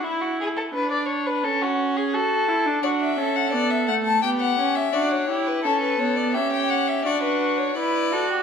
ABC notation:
X:1
M:4/4
L:1/16
Q:1/4=85
K:D
V:1 name="Violin"
z16 | d e2 f d e f a g f2 e d c2 B | A B c d e g f e d B2 c d4 |]
V:2 name="Violin"
E F ^G A B d c B A F2 G A4 | F2 A6 G4 F2 G2 | A4 G4 F4 B2 A G |]
V:3 name="Viola"
E4 D4 C4 F2 E D | D2 C2 B,2 A,2 B,2 C2 D2 E2 | C2 B,2 C4 D4 E2 F2 |]